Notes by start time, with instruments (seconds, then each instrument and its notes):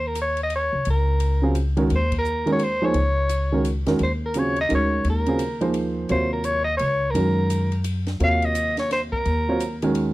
Already playing: upright bass D#2
0.07 soprano saxophone A#4
0.15 hi-hat pedal, ride
0.21 soprano saxophone C#5
0.37 ride
0.43 soprano saxophone D#5
0.50 ride
0.55 soprano saxophone C#5
0.73 upright bass C#2
0.85 upright bass C#2, ride
0.90 soprano saxophone A#4
1.20 ride
1.42 grand piano C#3 F#3 C4 F4 G#4
1.55 hi-hat pedal, ride
1.77 grand piano D#3 G#3 C#4 F#4 A#4, ride
1.90 upright bass D#2, ride
1.95 soprano saxophone C5
2.12 kick, ride
2.18 soprano saxophone A#4
2.25 hi-hat pedal
2.46 grand piano D#3 G#3 C#4 F#4 A#4, ride
2.52 soprano saxophone C#5
2.59 ride
2.64 soprano saxophone C5
2.82 grand piano F3 A#3 D#4 G#4 C5, soprano saxophone C#5
2.94 upright bass C#2, ride
3.29 hi-hat pedal, ride
3.52 grand piano D#3 G#3 C#4 F#4 A#4
3.65 hi-hat pedal, ride
3.86 upright bass E2, grand piano D#3 G#3 C#4 F#4 A#4, snare, ride
3.99 upright bass D#2, ride
4.03 soprano saxophone C5
4.26 soprano saxophone A#4
4.34 grand piano C#3 F#3 C4 F4 G#4, hi-hat pedal, ride
4.39 soprano saxophone C#5
4.56 ride
4.61 soprano saxophone D#5
4.69 upright bass D2, grand piano G#3 C#4 D#4 F#4 A#4, ride
4.75 soprano saxophone C#5
5.04 upright bass D#2, ride
5.10 soprano saxophone A#4
5.26 grand piano C#3 F#3 C4 F4 G#4, ride
5.39 hi-hat pedal, ride
5.61 grand piano F3 A#3 D#4 G#4 C5, ride
5.74 ride
6.09 upright bass D#2, grand piano C3 F#3 F4 A#4 C#5, soprano saxophone C5, ride
6.33 soprano saxophone A#4
6.44 soprano saxophone C#5, hi-hat pedal, ride
6.64 soprano saxophone D#5
6.77 upright bass C#2, soprano saxophone C#5, ride
7.10 upright bass F#2, soprano saxophone A#4
7.15 grand piano D#3 G#3 C#4 F#4 A#4, ride
7.50 hi-hat pedal, ride
7.72 ride
7.84 hi-hat pedal, ride
8.06 snare, ride
8.20 upright bass D#2, grand piano C3 F#3 F4 A#4 C#5, soprano saxophone F5, ride
8.42 soprano saxophone D#5, ride
8.55 hi-hat pedal, ride
8.77 soprano saxophone C#5, snare, ride
8.91 soprano saxophone C5, snare, ride
9.12 soprano saxophone A#4, kick
9.25 upright bass D#2, ride
9.48 grand piano F#3 C4 F4 A#4 C#5
9.60 hi-hat pedal, ride
9.82 grand piano D#3 G#3 C#4 F#4 A#4, ride
9.95 ride